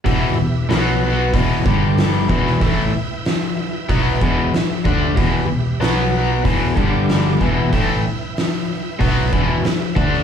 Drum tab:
HH |o---o---o---o---|o---o---o---o---|o---o---o---o---|o---o---o---o---|
SD |----o-------o--o|----o-------o---|----o-------o---|----o-------o--o|
BD |o-------o-o---o-|o-------o-o---o-|o-------o-o---o-|o-------o-o---o-|